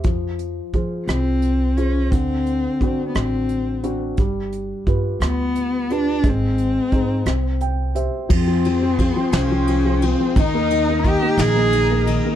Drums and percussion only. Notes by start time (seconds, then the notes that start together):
0.04 kick, closed hi-hat
0.39 closed hi-hat
0.73 kick, closed hi-hat
1.08 cross-stick, closed hi-hat
1.42 closed hi-hat
1.77 closed hi-hat
2.12 kick, closed hi-hat
2.47 closed hi-hat
2.81 kick, closed hi-hat
3.15 cross-stick, closed hi-hat
3.49 closed hi-hat
3.84 closed hi-hat
4.17 kick, closed hi-hat
4.52 closed hi-hat
4.87 kick, closed hi-hat
5.21 cross-stick, closed hi-hat
5.55 closed hi-hat
5.90 closed hi-hat
6.24 kick, closed hi-hat
6.58 closed hi-hat
6.92 kick, closed hi-hat
7.26 cross-stick, closed hi-hat
7.61 closed hi-hat
7.96 closed hi-hat
8.30 kick, crash
8.65 ride
8.99 kick, ride
9.32 snare, ride
9.67 ride
10.02 ride
10.36 kick, ride
10.70 ride
11.04 kick, ride
11.39 snare, ride
11.73 ride
12.07 ride